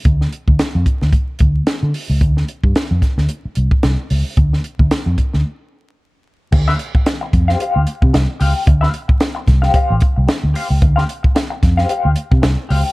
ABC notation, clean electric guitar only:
X:1
M:4/4
L:1/16
Q:"Swing 16ths" 1/4=112
K:Dm
V:1 name="Clean electric guitar"
z16 | z16 | z16 | z [Gcf]2 z4 [Gcf] [Gcf]2 z4 [Gcf] z |
z [Gcf]2 z4 [Gcf] [Gcf]2 z4 [Gcf] z | z [Gcf]2 z4 [Gcf] [Gcf]2 z4 [Gcf] z |]